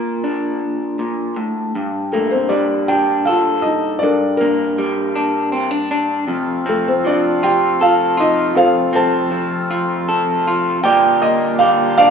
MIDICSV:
0, 0, Header, 1, 4, 480
1, 0, Start_track
1, 0, Tempo, 757576
1, 1109, Time_signature, 3, 2, 24, 8
1, 7668, End_track
2, 0, Start_track
2, 0, Title_t, "Felt piano"
2, 0, Program_c, 0, 0
2, 0, Note_on_c, 0, 62, 39
2, 0, Note_on_c, 0, 70, 70
2, 606, Note_off_c, 0, 70, 0
2, 615, Note_off_c, 0, 62, 0
2, 1348, Note_on_c, 0, 69, 65
2, 1360, Note_on_c, 0, 57, 53
2, 1461, Note_off_c, 0, 69, 0
2, 1464, Note_on_c, 0, 72, 70
2, 1467, Note_off_c, 0, 57, 0
2, 1485, Note_on_c, 0, 60, 57
2, 1578, Note_on_c, 0, 74, 77
2, 1590, Note_off_c, 0, 60, 0
2, 1591, Note_off_c, 0, 72, 0
2, 1600, Note_on_c, 0, 62, 63
2, 1819, Note_off_c, 0, 62, 0
2, 1827, Note_on_c, 0, 79, 83
2, 1832, Note_off_c, 0, 74, 0
2, 1850, Note_on_c, 0, 67, 67
2, 2061, Note_on_c, 0, 77, 80
2, 2064, Note_off_c, 0, 67, 0
2, 2076, Note_off_c, 0, 79, 0
2, 2084, Note_on_c, 0, 65, 65
2, 2295, Note_on_c, 0, 75, 73
2, 2301, Note_off_c, 0, 65, 0
2, 2313, Note_off_c, 0, 77, 0
2, 2323, Note_on_c, 0, 63, 59
2, 2527, Note_on_c, 0, 74, 83
2, 2540, Note_off_c, 0, 63, 0
2, 2550, Note_off_c, 0, 75, 0
2, 2554, Note_on_c, 0, 62, 60
2, 2554, Note_on_c, 0, 70, 59
2, 2557, Note_on_c, 0, 69, 58
2, 2761, Note_off_c, 0, 70, 0
2, 2770, Note_on_c, 0, 70, 81
2, 2775, Note_off_c, 0, 62, 0
2, 2777, Note_off_c, 0, 69, 0
2, 2786, Note_off_c, 0, 74, 0
2, 2794, Note_on_c, 0, 58, 46
2, 2794, Note_on_c, 0, 62, 49
2, 3711, Note_off_c, 0, 70, 0
2, 3722, Note_off_c, 0, 62, 0
2, 3723, Note_off_c, 0, 58, 0
2, 4239, Note_on_c, 0, 69, 67
2, 4243, Note_on_c, 0, 57, 52
2, 4345, Note_off_c, 0, 57, 0
2, 4354, Note_off_c, 0, 69, 0
2, 4359, Note_on_c, 0, 72, 73
2, 4365, Note_on_c, 0, 60, 57
2, 4465, Note_off_c, 0, 60, 0
2, 4473, Note_off_c, 0, 72, 0
2, 4477, Note_on_c, 0, 74, 83
2, 4480, Note_on_c, 0, 62, 63
2, 4694, Note_off_c, 0, 62, 0
2, 4713, Note_on_c, 0, 79, 84
2, 4716, Note_off_c, 0, 74, 0
2, 4716, Note_on_c, 0, 67, 66
2, 4932, Note_off_c, 0, 67, 0
2, 4953, Note_off_c, 0, 79, 0
2, 4956, Note_on_c, 0, 65, 66
2, 4957, Note_on_c, 0, 77, 82
2, 5171, Note_off_c, 0, 65, 0
2, 5195, Note_off_c, 0, 77, 0
2, 5196, Note_on_c, 0, 63, 63
2, 5198, Note_on_c, 0, 75, 86
2, 5411, Note_off_c, 0, 63, 0
2, 5427, Note_on_c, 0, 69, 72
2, 5427, Note_on_c, 0, 72, 66
2, 5430, Note_on_c, 0, 65, 70
2, 5432, Note_on_c, 0, 77, 95
2, 5435, Note_off_c, 0, 75, 0
2, 5646, Note_off_c, 0, 69, 0
2, 5646, Note_off_c, 0, 72, 0
2, 5648, Note_off_c, 0, 65, 0
2, 5671, Note_on_c, 0, 69, 65
2, 5671, Note_on_c, 0, 72, 66
2, 5672, Note_off_c, 0, 77, 0
2, 5674, Note_on_c, 0, 81, 92
2, 6602, Note_off_c, 0, 69, 0
2, 6602, Note_off_c, 0, 72, 0
2, 6604, Note_off_c, 0, 81, 0
2, 6865, Note_on_c, 0, 79, 102
2, 6877, Note_on_c, 0, 74, 72
2, 7109, Note_on_c, 0, 75, 85
2, 7111, Note_off_c, 0, 79, 0
2, 7342, Note_on_c, 0, 77, 95
2, 7353, Note_off_c, 0, 75, 0
2, 7565, Note_off_c, 0, 74, 0
2, 7578, Note_off_c, 0, 77, 0
2, 7588, Note_on_c, 0, 77, 116
2, 7597, Note_on_c, 0, 74, 74
2, 7668, Note_off_c, 0, 74, 0
2, 7668, Note_off_c, 0, 77, 0
2, 7668, End_track
3, 0, Start_track
3, 0, Title_t, "Clean electric guitar"
3, 0, Program_c, 1, 27
3, 0, Note_on_c, 1, 46, 52
3, 0, Note_on_c, 1, 58, 44
3, 151, Note_on_c, 1, 62, 41
3, 383, Note_off_c, 1, 58, 0
3, 621, Note_off_c, 1, 46, 0
3, 628, Note_on_c, 1, 46, 46
3, 864, Note_on_c, 1, 45, 46
3, 869, Note_off_c, 1, 46, 0
3, 1083, Note_off_c, 1, 62, 0
3, 1107, Note_off_c, 1, 45, 0
3, 1112, Note_on_c, 1, 43, 57
3, 1352, Note_on_c, 1, 58, 47
3, 1583, Note_on_c, 1, 55, 52
3, 1831, Note_on_c, 1, 62, 48
3, 2072, Note_on_c, 1, 69, 57
3, 2311, Note_off_c, 1, 62, 0
3, 2518, Note_off_c, 1, 55, 0
3, 2523, Note_off_c, 1, 43, 0
3, 2523, Note_off_c, 1, 58, 0
3, 2553, Note_on_c, 1, 43, 61
3, 2572, Note_off_c, 1, 69, 0
3, 2792, Note_on_c, 1, 58, 50
3, 3030, Note_on_c, 1, 55, 52
3, 3266, Note_on_c, 1, 62, 50
3, 3496, Note_off_c, 1, 62, 0
3, 3499, Note_on_c, 1, 60, 54
3, 3617, Note_off_c, 1, 60, 0
3, 3617, Note_on_c, 1, 62, 44
3, 3736, Note_off_c, 1, 62, 0
3, 3744, Note_on_c, 1, 62, 52
3, 3955, Note_off_c, 1, 62, 0
3, 3957, Note_off_c, 1, 43, 0
3, 3957, Note_off_c, 1, 55, 0
3, 3957, Note_off_c, 1, 58, 0
3, 3976, Note_on_c, 1, 41, 66
3, 4219, Note_on_c, 1, 60, 57
3, 4464, Note_on_c, 1, 53, 60
3, 4708, Note_on_c, 1, 65, 58
3, 4949, Note_on_c, 1, 69, 64
3, 5176, Note_off_c, 1, 65, 0
3, 5178, Note_on_c, 1, 65, 55
3, 5388, Note_off_c, 1, 60, 0
3, 5395, Note_off_c, 1, 69, 0
3, 5412, Note_off_c, 1, 41, 0
3, 5419, Note_on_c, 1, 41, 64
3, 5657, Note_on_c, 1, 60, 57
3, 5896, Note_off_c, 1, 53, 0
3, 5899, Note_on_c, 1, 53, 61
3, 6147, Note_off_c, 1, 65, 0
3, 6149, Note_on_c, 1, 65, 57
3, 6390, Note_on_c, 1, 69, 65
3, 6626, Note_off_c, 1, 65, 0
3, 6637, Note_on_c, 1, 65, 57
3, 6832, Note_off_c, 1, 60, 0
3, 6833, Note_off_c, 1, 53, 0
3, 6838, Note_off_c, 1, 69, 0
3, 6841, Note_off_c, 1, 65, 0
3, 6862, Note_off_c, 1, 41, 0
3, 6871, Note_on_c, 1, 46, 68
3, 6875, Note_on_c, 1, 67, 50
3, 7108, Note_on_c, 1, 58, 51
3, 7347, Note_off_c, 1, 67, 0
3, 7350, Note_on_c, 1, 67, 64
3, 7593, Note_on_c, 1, 62, 55
3, 7668, Note_off_c, 1, 46, 0
3, 7668, Note_off_c, 1, 58, 0
3, 7668, Note_off_c, 1, 62, 0
3, 7668, Note_off_c, 1, 67, 0
3, 7668, End_track
4, 0, Start_track
4, 0, Title_t, "Harmonium"
4, 0, Program_c, 2, 20
4, 3968, Note_on_c, 2, 48, 71
4, 3968, Note_on_c, 2, 57, 62
4, 3968, Note_on_c, 2, 65, 75
4, 3977, Note_on_c, 2, 53, 62
4, 6828, Note_off_c, 2, 48, 0
4, 6828, Note_off_c, 2, 57, 0
4, 6828, Note_off_c, 2, 65, 0
4, 6833, Note_off_c, 2, 53, 0
4, 6868, Note_on_c, 2, 58, 64
4, 6868, Note_on_c, 2, 65, 76
4, 6870, Note_on_c, 2, 50, 68
4, 6871, Note_on_c, 2, 55, 61
4, 7668, Note_off_c, 2, 50, 0
4, 7668, Note_off_c, 2, 55, 0
4, 7668, Note_off_c, 2, 58, 0
4, 7668, Note_off_c, 2, 65, 0
4, 7668, End_track
0, 0, End_of_file